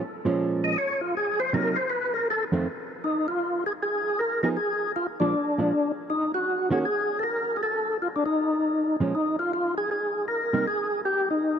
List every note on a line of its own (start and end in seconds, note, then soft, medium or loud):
0.25 0.75 A#2 medium
0.25 0.75 F3 medium
0.25 0.75 G#3 medium
0.25 0.75 C#4 medium
0.64 0.77 D#5 medium
0.78 1.01 C#5 loud
1.01 1.15 F4 medium
1.17 1.40 G#4 medium
1.40 1.53 C5 loud
1.53 1.75 C3 medium
1.53 1.76 F#3 medium
1.53 1.76 A#3 medium
1.53 1.76 D#4 medium
1.53 1.77 A#4 medium
1.76 1.90 C5 loud
1.90 2.14 B4 loud
2.14 2.28 A#4 loud
2.30 2.45 A4 loud
2.52 2.65 F2 medium
2.52 2.66 D#3 medium
2.52 2.66 A3 medium
2.52 2.66 C4 medium
3.04 3.27 D#4 medium
3.28 3.64 F4 medium
3.66 3.73 G#4 medium
3.83 4.21 G#4 loud
4.19 4.42 A#4 medium
4.43 4.56 F3 medium
4.43 4.56 B3 medium
4.43 4.56 D#4 medium
4.43 4.57 G#4 medium
4.43 4.49 A#4 medium
4.57 4.92 G#4 loud
4.96 5.07 F4 medium
5.20 5.33 A#2 medium
5.20 5.33 F3 medium
5.20 5.33 G#3 medium
5.20 5.92 D4 loud
5.20 5.33 D4 medium
5.58 5.71 A#2 medium
5.58 5.71 F3 medium
5.58 5.71 G#3 medium
5.58 5.71 D4 medium
6.10 6.32 D#4 medium
6.34 6.69 F#4 medium
6.71 6.84 D#3 medium
6.71 6.84 A#3 medium
6.71 6.84 C#4 medium
6.71 6.84 F#4 medium
6.71 6.79 G#4 medium
6.85 7.19 G#4 medium
7.19 7.24 A4 medium
7.19 7.57 A#4 medium
7.57 7.62 G#4 medium
7.63 7.97 A4 loud
8.02 8.08 F4 medium
8.16 8.24 D4 medium
8.26 8.96 D#4 loud
9.00 9.12 A#2 medium
9.00 9.12 F3 medium
9.00 9.13 G#3 medium
9.00 9.13 C#4 medium
9.15 9.36 D#4 medium
9.39 9.52 F4 medium
9.53 9.75 F4 medium
9.78 9.90 G#4 medium
9.91 10.25 G#4 medium
10.28 10.66 A#4 medium
10.53 10.65 C3 medium
10.53 10.65 G3 medium
10.53 10.65 A#3 medium
10.53 10.65 D#4 medium
10.67 11.02 G#4 loud
11.05 11.29 G4 medium
11.31 11.59 D#4 medium